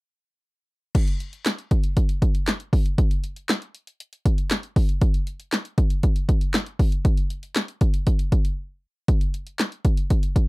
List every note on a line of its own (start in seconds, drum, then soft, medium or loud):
0.95 kick loud
0.95 closed hi-hat medium
0.95 crash loud
1.08 closed hi-hat medium
1.20 closed hi-hat medium
1.33 closed hi-hat medium
1.46 snare loud
1.46 clap loud
1.46 closed hi-hat medium
1.59 closed hi-hat medium
1.71 kick loud
1.71 closed hi-hat medium
1.84 closed hi-hat medium
1.97 kick medium
1.97 closed hi-hat loud
2.09 closed hi-hat medium
2.22 kick medium
2.22 closed hi-hat medium
2.35 closed hi-hat medium
2.47 snare loud
2.47 clap loud
2.47 closed hi-hat medium
2.60 closed hi-hat medium
2.73 kick loud
2.73 open hi-hat medium
2.86 closed hi-hat medium
2.98 kick loud
2.98 closed hi-hat medium
3.11 closed hi-hat medium
3.24 closed hi-hat medium
3.36 closed hi-hat medium
3.49 snare loud
3.49 clap loud
3.49 closed hi-hat medium
3.62 closed hi-hat medium
3.75 closed hi-hat medium
3.87 closed hi-hat medium
4.00 closed hi-hat medium
4.13 closed hi-hat medium
4.26 kick medium
4.26 closed hi-hat medium
4.38 closed hi-hat medium
4.51 snare loud
4.51 clap loud
4.51 closed hi-hat medium
4.63 closed hi-hat medium
4.76 kick loud
4.76 open hi-hat medium
4.89 closed hi-hat medium
5.01 kick loud
5.01 closed hi-hat medium
5.14 closed hi-hat medium
5.27 closed hi-hat medium
5.40 closed hi-hat medium
5.52 snare loud
5.52 clap loud
5.52 closed hi-hat medium
5.65 closed hi-hat medium
5.78 kick loud
5.78 closed hi-hat medium
5.90 closed hi-hat medium
6.03 kick medium
6.03 closed hi-hat medium
6.16 closed hi-hat medium
6.29 kick medium
6.29 closed hi-hat medium
6.41 closed hi-hat medium
6.54 snare loud
6.54 clap loud
6.54 closed hi-hat medium
6.66 closed hi-hat medium
6.79 kick loud
6.79 open hi-hat medium
6.92 closed hi-hat medium
7.05 kick loud
7.05 closed hi-hat medium
7.17 closed hi-hat medium
7.30 closed hi-hat medium
7.43 closed hi-hat medium
7.56 snare loud
7.56 clap loud
7.56 closed hi-hat medium
7.68 closed hi-hat medium
7.81 kick loud
7.81 closed hi-hat medium
7.94 closed hi-hat medium
8.07 kick medium
8.07 closed hi-hat medium
8.19 closed hi-hat medium
8.32 kick medium
8.32 closed hi-hat medium
8.45 closed hi-hat medium
9.08 kick loud
9.08 closed hi-hat medium
9.21 closed hi-hat medium
9.34 closed hi-hat medium
9.47 closed hi-hat medium
9.59 snare loud
9.59 clap loud
9.59 closed hi-hat medium
9.72 closed hi-hat medium
9.85 kick loud
9.85 closed hi-hat medium
9.97 closed hi-hat medium
10.10 kick medium
10.10 closed hi-hat medium
10.23 closed hi-hat medium
10.36 kick medium
10.36 closed hi-hat medium